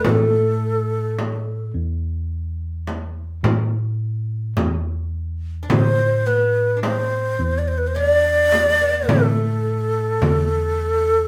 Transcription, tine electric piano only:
\new Staff \with { instrumentName = "Tine electric piano" } { \clef bass \time 10/8 \tempo 4 = 53 a,4. e,4. a,4 e,4 | a,4. e,4. a,4 e,4 | }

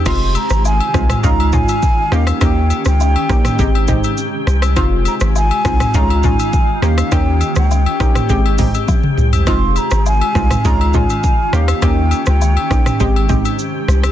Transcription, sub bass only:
\new Staff \with { instrumentName = "Sub bass" } { \clef bass \time 4/4 \key aes \major \tempo 4 = 102 f,,8. aes,,8. c,8 des,4 r8 ees,8 | ees,8. des,8. bes,,8 aes,,4 r8 c,8 | f,,8. aes,,8. c,8 des,4 r8 ees,8 | ees,8. des,8. bes,,8 aes,,4 r8 c,8 |
f,,8. aes,,8. c,8 des,4 r8 ees,8 | ees,8. des,8. bes,,8 aes,,4 r8 c,8 | }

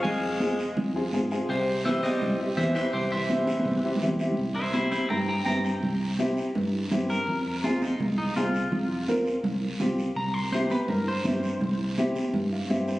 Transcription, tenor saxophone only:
\new Staff \with { instrumentName = "Tenor saxophone" } { \clef bass \time 4/4 \key c \phrygian \tempo 4 = 166 aes2 r2 | c4 e8 g4 r8 e8 e8 | c8 e2. r8 | r1 |
r1 | r1 | r1 | r1 |
r1 | }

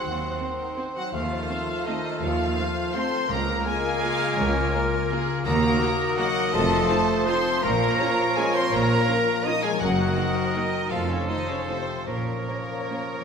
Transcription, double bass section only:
\new Staff \with { instrumentName = "Double bass section" } { \clef bass \time 3/4 \key bes \minor \tempo 4 = 163 ees,4 r2 | ees,4 r2 | ees,4 r2 | des,4 r2 |
des,4 r2 | ees,4 r2 | f,,4 r2 | bes,,4 r2 |
bes,,4 r2 | ges,,4 r2 | f,,4 r2 | bes,,4 r2 | }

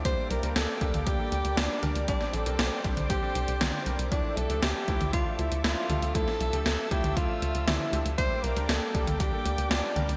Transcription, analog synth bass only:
\new Staff \with { instrumentName = "Analog synth bass" } { \clef bass \time 4/4 \key d \minor \tempo 4 = 118 d,16 r16 c,16 d,16 d,16 r16 d,16 d,16 d,16 r16 d,16 d,16 d,16 r16 d,16 d,16 | c,16 r16 bes,,16 c,16 c,16 r16 c,16 c,16 c,16 r16 c,16 c,16 c,16 r16 c,16 c,16 | d,16 r16 c,16 d,16 d,16 r16 d,16 d,16 d,16 r16 d,16 d,16 d,16 r16 d,16 d,16 | d,16 r16 c,16 d,16 d,16 r16 d,16 d,16 d,16 r16 d,16 d,16 d,16 r16 d,16 d,16 |
d,16 r16 c,16 d,16 d,16 r16 d,16 d,16 d,16 r16 d,16 d,16 d,16 r16 d,16 d,16 | }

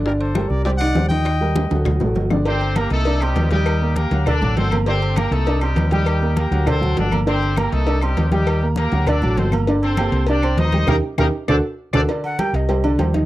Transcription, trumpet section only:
\new Staff \with { instrumentName = "Trumpet section" } { \time 4/4 \key g \minor \tempo 4 = 199 <g' bes'>8 <a' c''>4 <bes' d''>8 <g' d''>8 <d'' fis''>4 <ees'' g''>8~ | <ees'' g''>2 r2 | r1 | r1 |
r1 | r1 | r1 | r1 |
r1 | r1 | r1 | }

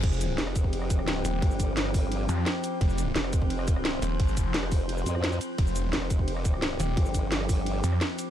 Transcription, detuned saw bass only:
\new Staff \with { instrumentName = "Detuned saw bass" } { \clef bass \time 4/4 \key c \phrygian \tempo 4 = 173 f,,4 r2 r8 ees,,8 | r2 r8 f,8 r4 | f,,4 r2 r8 ees,,8 | aes,,8 f,,8 r2. |
f,,4 r2 r8 ees,,8 | r2 r8 f,8 r4 | }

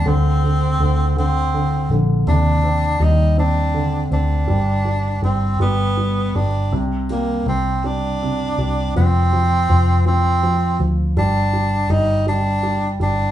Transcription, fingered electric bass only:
\new Staff \with { instrumentName = "Fingered electric bass" } { \clef bass \time 6/8 \key c \minor \tempo 4. = 54 d,4 d,4. bes,,8 | ees,4 ees,4. d,8 | g,,4 g,,8 g,,4 g,,8 | c,4 c,4. c,8 |
f,,4 f,,4. d,8 | g,,4 g,,4. g,,8 | }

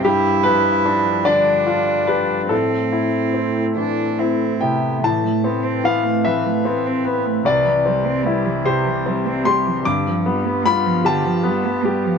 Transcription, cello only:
\new Staff \with { instrumentName = "Cello" } { \clef bass \time 6/8 \key a \minor \tempo 4. = 50 e'4. d'4. | c'4. d'8 c'8 b8 | e16 a16 b16 c'16 b16 a16 e16 a16 b16 c'16 b16 a16 | c16 e16 g16 c'16 g16 e16 c16 e16 g16 c'16 g16 e16 |
d16 f16 g16 b16 g16 f16 d16 f16 g16 b16 g16 f16 | }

